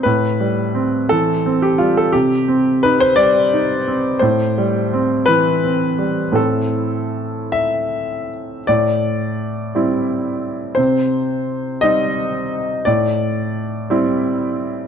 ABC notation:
X:1
M:6/8
L:1/16
Q:3/8=57
K:Am
V:1 name="Grand piano"
B6 A3 G F A | G4 B c d6 | c6 B6 | A6 e6 |
d12 | c6 _e6 | d12 |]
V:2 name="Grand piano" clef=bass
A,,2 G,2 C2 E,2 C2 G,2 | C,2 C2 _E2 G,2 E2 C2 | A,,2 G,2 C2 E,2 C2 G,2 | [A,,A,CE]12 |
A,,6 [G,CE]6 | C,6 [G,C_E]6 | A,,6 [G,CE]6 |]